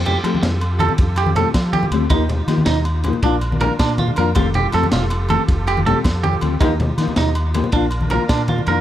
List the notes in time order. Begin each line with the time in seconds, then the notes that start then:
Already playing: F2 F4 G4 A4
0.05 G4, ride, low conga
0.23 F3 A3 C4 G4, muted clean electric guitar stroke, ride, low conga, low agogo
0.34 high conga
0.42 F2, muted clean electric guitar stroke, snare, ride, low conga
0.61 ride, low agogo
0.79 F3 C4 G4 A4, ride, high conga, low agogo
0.89 low conga
0.98 F2, kick, ride
1.16 G4, ride, low conga, low agogo
1.26 high conga
1.36 F3 A3 C4 G4 A4, ride, low conga
1.54 F3, kick, snare, ride, low agogo
1.73 G4, ride, high conga
1.83 low conga
1.91 D2 F3 A3 C4 G4, ride, low agogo
2.09 D#2 F3 A#3 D#4 G4, kick, ride, high conga, low conga, low agogo
2.29 ride, low conga
2.48 D#3 F3 A#3 D#4 G4, snare, ride, low conga, low agogo
2.58 high conga
2.66 D#2 D#4, snare, ride, low conga
2.85 ride, low agogo
3.04 F3 A#3 D#4, ride, high conga, low agogo
3.08 muted nylon-string guitar stroke
3.13 low conga
3.22 A#1 F3 A#3 D4 F4 A#4, kick, ride
3.41 ride, low conga, low agogo
3.52 high conga
3.60 F3 A#3 D4 F4 A#4, ride, low conga
3.79 A#2 D4, kick, snare, ride, low agogo
3.98 F4, ride, high conga
4.08 low conga
4.16 F2 F3 A#3 D4 F4 A#4, ride, low agogo
4.34 F1 F3 A3 C4 F4 G4 A4, kick, ride, high conga, low conga, low agogo
4.54 G4, ride, low conga
4.72 F2 F3 A3 C4 A4, snare, ride, low conga, low agogo
4.83 high conga
4.92 F1 F4, snare, ride, low conga
5.10 ride, low agogo
5.29 F3 A3 C4 G4 A4, ride, high conga, low agogo
5.48 F1, kick, ride
5.67 G4, ride, low conga, low agogo
5.77 high conga
5.85 F3 A3 C4 G4 A4, ride, low conga
6.04 F2, kick, snare, ride, low conga, low agogo
6.23 G4, ride, high conga
6.33 low conga
6.41 D2 F3 A3 C4 G4, ride, low agogo
6.60 D#2 F3 A#3 D#4 G4, kick, ride, high conga, low agogo
6.80 ride, low conga
6.98 D#3 F3 A#3 D#4, muted nylon-string guitar stroke, snare, ride, low agogo
7.08 high conga
7.16 D#2 D#4, snare, ride, low conga
7.35 ride, low agogo
7.54 F3 A#3 D#4 G4, ride, high conga, low agogo
7.64 low conga
7.72 A#1 F3 A#3 D4 A#4, kick, ride, low conga
7.76 D4 F4
7.91 ride, low agogo
8.01 high conga, low conga
8.10 F3 A#3 D4 F4 A#4, ride, low conga
8.29 A#2 D4, kick, snare, ride, low agogo
8.39 low conga
8.48 F4, ride, high conga, low conga
8.58 low conga
8.66 F2 F3 A#3 D4 A#4, ride, low agogo
8.71 F4